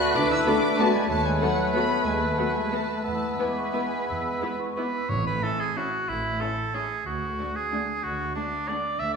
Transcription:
0.00 1.06 A3 medium
0.00 0.15 F#4 loud
0.00 1.06 B4 medium
0.00 0.15 D5 loud
0.00 0.15 F#6 loud
0.00 0.84 F#6 loud
0.15 0.41 D2 medium
0.15 0.31 D4 loud
0.15 0.80 B4 medium
0.15 0.31 D6 loud
0.31 0.47 E4 loud
0.31 0.47 E6 loud
0.46 0.58 A3 medium
0.46 0.55 B3 medium
0.46 0.79 D4 loud
0.46 0.58 F#4 medium
0.46 0.55 F#4 medium
0.46 0.54 A4 medium
0.46 0.54 B4 medium
0.46 0.78 D6 loud
0.78 0.90 A3 medium
0.78 0.95 A3 medium
0.78 0.87 B3 medium
0.78 0.90 F#4 medium
0.78 0.87 F#4 medium
0.78 0.87 A4 medium
0.78 0.87 B4 medium
0.78 1.11 D5 medium
0.78 0.95 A5 loud
0.93 1.00 G#3 medium
0.93 1.09 G#5 loud
1.09 1.35 D#2 medium
1.09 1.24 A3 loud
1.09 3.00 A3 medium
1.09 3.01 B4 medium
1.09 2.04 C#5 medium
1.09 1.24 A5 loud
1.09 3.01 F#6 medium
1.24 1.41 G#3 medium
1.24 1.41 G#5 loud
1.41 1.74 F#3 medium
1.41 1.53 A3 medium
1.41 1.49 B3 medium
1.41 1.50 F#4 medium
1.41 1.49 A4 medium
1.41 1.52 B4 medium
1.41 1.49 B4 medium
1.41 1.73 F#5 loud
1.72 1.85 A3 medium
1.72 2.05 B3 medium
1.72 1.83 B3 medium
1.72 1.83 F#4 medium
1.72 1.81 A4 medium
1.72 1.81 B4 medium
1.72 1.85 B4 medium
1.72 2.04 B5 loud
2.04 2.31 D#2 medium
2.04 2.21 G#3 medium
2.04 2.75 B4 medium
2.04 2.20 G#5 loud
2.19 2.27 A3 medium
2.19 2.37 A5 medium
2.36 2.54 F#3 medium
2.36 2.49 A3 medium
2.36 2.46 B3 soft
2.36 2.47 F#4 medium
2.36 2.45 A4 medium
2.36 2.49 B4 medium
2.36 2.45 B4 soft
2.36 2.53 F#5 medium
2.53 2.72 G#3 medium
2.53 2.71 G#5 medium
2.69 3.03 A3 medium
2.69 2.84 A3 soft
2.69 2.80 B3 soft
2.69 2.80 F#4 soft
2.69 2.80 A4 medium
2.69 2.83 B4 medium
2.69 2.79 B4 soft
2.69 3.03 A5 medium
3.04 3.33 E2 medium
3.04 3.38 A3 medium
3.04 4.90 B3 medium
3.04 4.59 B4 medium
3.04 4.90 E5 medium
3.04 3.38 A5 medium
3.04 3.35 E6 medium
3.38 4.74 G#3 medium
3.38 3.51 B3 medium
3.38 3.47 B3 soft
3.38 3.47 E4 soft
3.38 3.52 B4 medium
3.38 3.47 B4 soft
3.38 4.77 G#5 medium
3.38 3.55 D6 medium
3.58 3.75 C#6 medium
3.73 3.81 B3 soft
3.73 3.86 B3 soft
3.73 3.81 E4 soft
3.73 3.82 B4 soft
3.73 3.87 B4 medium
3.73 4.08 B5 medium
4.08 4.36 E2 medium
4.08 4.41 E6 medium
4.41 4.50 B3 soft
4.41 4.55 B3 soft
4.41 4.50 E4 soft
4.41 4.49 B4 soft
4.41 4.54 B4 soft
4.41 4.60 B5 medium
4.61 4.78 C#6 medium
4.76 4.86 B3 soft
4.76 4.90 B3 medium
4.76 4.86 E4 soft
4.76 5.11 B4 medium
4.76 4.85 B4 soft
4.76 4.89 B4 soft
4.76 4.94 D6 medium
4.95 5.10 E6 medium
5.09 5.37 A1 medium
5.09 5.56 A2 medium
5.09 5.37 A2 medium
5.09 5.25 C#5 medium
5.27 5.45 B4 medium
5.43 5.51 C#4 soft
5.43 5.51 E4 soft
5.43 5.62 A4 medium
5.43 5.51 E5 medium
5.60 5.78 G#4 medium
5.77 5.85 C#4 soft
5.77 5.85 E4 soft
5.77 6.10 F#4 medium
5.77 5.85 E5 medium
6.09 6.35 A1 medium
6.09 6.36 A2 medium
6.09 6.42 E4 medium
6.41 6.50 C#4 soft
6.41 6.49 E4 soft
6.41 6.76 A4 medium
6.41 6.49 E5 soft
6.74 6.82 C#4 soft
6.74 6.83 E4 soft
6.74 7.05 G#4 medium
6.74 6.82 E5 medium
7.06 7.33 D2 medium
7.06 7.57 F#4 medium
7.38 7.47 A3 soft
7.38 7.47 D4 soft
7.38 7.46 F#5 soft
7.56 8.05 G#4 medium
7.71 7.80 A3 soft
7.71 7.79 D4 soft
7.71 7.80 F#5 medium
8.03 8.29 D2 medium
8.03 8.30 D2 medium
8.03 8.34 F#4 medium
8.34 8.44 A3 soft
8.34 8.70 D4 medium
8.34 8.44 D4 soft
8.34 8.42 F#5 soft
8.68 8.77 A3 soft
8.68 8.78 D4 soft
8.68 9.01 D5 medium
8.68 8.77 F#5 medium
8.99 9.16 D2 medium
8.99 9.14 E5 medium

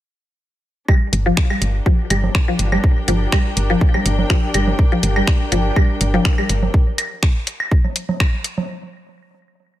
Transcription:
0.88 0.93 G3 medium
0.88 6.74 D4 medium
0.88 kick loud
0.88 claves medium
1.05 6.74 A#4 medium
1.13 1.31 G1 loud
1.13 closed hi-hat medium
1.20 6.74 G4 medium
1.26 1.32 F3 loud
1.37 finger snap medium
1.37 kick loud
1.50 1.54 G3 medium
1.50 claves medium
1.55 6.74 G5 medium
1.62 1.80 G1 medium
1.62 closed hi-hat medium
1.86 1.93 F3 loud
1.86 kick loud
2.10 2.29 G1 loud
2.10 2.15 G3 medium
2.10 closed hi-hat medium
2.10 claves medium
2.24 high conga medium
2.35 finger snap medium
2.35 kick loud
2.48 2.54 F3 loud
2.59 2.78 G1 medium
2.59 closed hi-hat medium
2.72 2.76 G3 medium
2.72 high conga medium
2.72 claves medium
2.84 kick loud
3.08 3.26 G1 loud
3.08 3.14 F3 loud
3.08 closed hi-hat medium
3.32 3.37 G3 medium
3.32 finger snap loud
3.32 kick loud
3.32 claves medium
3.57 3.75 G1 medium
3.57 closed hi-hat medium
3.70 3.75 F3 loud
3.81 kick loud
3.94 3.98 G3 medium
3.94 high conga medium
3.94 claves medium
4.06 4.24 G1 loud
4.06 closed hi-hat medium
4.19 high conga medium
4.30 4.37 F3 loud
4.30 finger snap medium
4.30 kick loud
4.54 4.73 G1 medium
4.54 4.59 G3 medium
4.54 closed hi-hat medium
4.54 claves medium
4.67 high conga medium
4.79 kick loud
4.92 4.98 F3 loud
5.03 5.22 G1 loud
5.03 closed hi-hat medium
5.16 5.20 G3 medium
5.16 claves medium
5.27 finger snap medium
5.27 kick loud
5.52 5.70 G1 medium
5.52 5.58 F3 loud
5.52 closed hi-hat medium
5.76 5.81 G3 medium
5.76 kick loud
5.76 claves medium
6.01 6.19 G1 loud
6.01 closed hi-hat medium
6.14 6.19 F3 loud
6.14 high conga medium
6.25 finger snap medium
6.25 kick loud
6.38 6.42 G3 medium
6.38 claves medium
6.49 6.68 G1 medium
6.49 closed hi-hat medium
6.63 high conga medium
6.74 kick loud
6.98 closed hi-hat loud
6.98 claves medium
7.23 finger snap medium
7.23 kick loud
7.47 closed hi-hat medium
7.60 claves medium
7.71 kick loud
7.84 high conga medium
7.96 closed hi-hat medium
8.09 high conga medium
8.20 finger snap medium
8.20 kick loud
8.20 claves medium
8.44 closed hi-hat medium
8.58 high conga medium

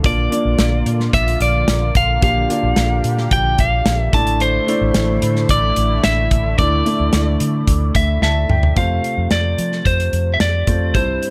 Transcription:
0.03 0.27 A#1 loud
0.03 4.09 D3 medium
0.03 0.27 A#3 medium
0.03 4.09 A#3 medium
0.03 0.27 D4 medium
0.03 2.20 F4 medium
0.03 0.28 F4 medium
0.03 0.28 D5 medium
0.03 1.10 D5 medium
0.03 kick loud
0.03 closed hi-hat medium
0.30 1.24 A#3 medium
0.30 1.24 D4 medium
0.30 1.25 F4 medium
0.30 1.25 D5 medium
0.30 closed hi-hat medium
0.45 0.56 A#1 medium
0.59 0.81 A#1 medium
0.59 snare loud
0.59 closed hi-hat medium
0.86 1.08 A#2 loud
0.86 closed hi-hat medium
1.00 snare soft
1.13 1.36 A#1 loud
1.13 1.42 E5 medium
1.13 kick medium
1.13 closed hi-hat medium
1.28 closed hi-hat medium
1.40 1.63 A#1 medium
1.40 1.96 D5 medium
1.40 closed hi-hat medium
1.68 1.90 A#1 medium
1.68 snare loud
1.68 closed hi-hat medium
1.95 2.17 A#1 medium
1.95 2.22 F5 medium
1.95 kick medium
1.95 closed hi-hat medium
2.21 2.45 A#1 medium
2.21 2.45 A#3 medium
2.21 2.45 D4 medium
2.21 2.46 F4 medium
2.21 4.11 G4 medium
2.21 2.46 G4 medium
2.21 3.35 F5 medium
2.21 kick loud
2.21 closed hi-hat medium
2.49 3.42 A#3 medium
2.49 3.43 D4 medium
2.49 3.43 F4 medium
2.49 3.43 D5 medium
2.49 closed hi-hat medium
2.63 2.74 A#1 medium
2.76 2.99 A#1 loud
2.76 snare medium
2.76 closed hi-hat medium
3.04 3.26 A#2 medium
3.04 closed hi-hat medium
3.18 snare soft
3.31 3.54 A#1 loud
3.31 3.60 G5 loud
3.31 kick medium
3.31 closed hi-hat medium
3.58 3.81 A#1 medium
3.58 4.00 F5 medium
3.58 kick medium
3.58 closed hi-hat medium
3.86 4.08 A#1 medium
3.86 snare loud
3.86 closed hi-hat medium
4.00 4.15 E5 medium
4.12 4.58 A1 medium
4.12 8.73 D3 medium
4.12 4.59 A3 medium
4.12 8.73 A3 medium
4.12 4.60 D4 medium
4.12 8.73 E4 medium
4.12 4.60 E4 medium
4.12 4.60 D5 medium
4.12 4.42 A5 loud
4.12 kick loud
4.12 closed hi-hat medium
4.27 closed hi-hat medium
4.40 5.53 C5 medium
4.40 closed hi-hat medium
4.67 5.60 A3 medium
4.67 5.61 D4 medium
4.67 5.61 E4 medium
4.67 5.61 D5 medium
4.67 closed hi-hat medium
4.81 4.92 A1 medium
4.94 5.17 A1 loud
4.94 snare loud
4.94 closed hi-hat medium
5.22 5.45 A2 medium
5.22 closed hi-hat medium
5.36 snare soft
5.49 5.72 A1 loud
5.49 6.04 D5 medium
5.49 kick medium
5.49 closed hi-hat medium
5.76 5.99 A1 loud
5.76 closed hi-hat medium
6.04 6.26 A1 medium
6.04 6.58 E5 medium
6.04 snare loud
6.04 closed hi-hat medium
6.31 6.54 A1 medium
6.31 kick medium
6.31 closed hi-hat medium
6.58 6.81 D2 medium
6.58 7.36 A2 medium
6.58 6.81 A3 medium
6.58 6.82 D4 medium
6.58 6.82 E4 medium
6.58 8.18 D5 medium
6.58 6.82 D5 medium
6.58 kick loud
6.58 closed hi-hat medium
6.85 7.78 A3 medium
6.85 7.79 D4 medium
6.85 7.79 E4 medium
6.85 7.79 D5 medium
6.85 closed hi-hat medium
7.00 7.11 D2 medium
7.13 7.35 D2 medium
7.13 snare medium
7.13 closed hi-hat medium
7.40 7.63 D3 medium
7.40 closed hi-hat medium
7.67 7.90 D2 medium
7.67 kick medium
7.67 closed hi-hat medium
7.95 8.17 D2 medium
7.95 8.22 E5 medium
7.95 kick medium
7.95 closed hi-hat medium
8.22 8.44 D2 loud
8.22 8.77 E5 medium
8.22 8.47 A5 medium
8.22 snare medium
8.49 8.72 D2 medium
8.49 8.75 G5 medium
8.49 mid tom medium
8.63 floor tom medium
8.76 8.99 F2 medium
8.76 9.54 C3 medium
8.76 9.69 A3 medium
8.76 9.69 C4 medium
8.76 9.70 F4 medium
8.76 9.70 C5 medium
8.76 9.31 F5 medium
8.76 kick medium
8.76 closed hi-hat medium
9.04 closed hi-hat medium
9.17 9.29 F2 medium
9.31 9.53 F2 medium
9.31 9.88 D5 medium
9.31 snare medium
9.31 closed hi-hat medium
9.58 9.81 F3 medium
9.58 closed hi-hat medium
9.72 snare soft
9.86 10.08 F2 medium
9.86 10.35 C5 medium
9.86 kick medium
9.86 closed hi-hat medium
10.00 closed hi-hat medium
10.13 10.35 F2 medium
10.13 closed hi-hat medium
10.34 10.40 E5 soft
10.40 10.62 F2 medium
10.40 10.97 D5 medium
10.40 snare loud
10.40 closed hi-hat medium
10.67 10.95 F2 medium
10.67 10.91 A3 medium
10.67 10.91 C4 soft
10.67 10.91 F4 medium
10.67 10.92 C5 medium
10.67 kick medium
10.67 closed hi-hat medium
10.94 11.17 C2 medium
10.94 11.30 G2 soft
10.94 11.30 G3 medium
10.94 11.30 C4 medium
10.94 11.30 E4 medium
10.94 11.30 C5 medium
10.94 kick loud
10.94 closed hi-hat medium
11.23 closed hi-hat medium

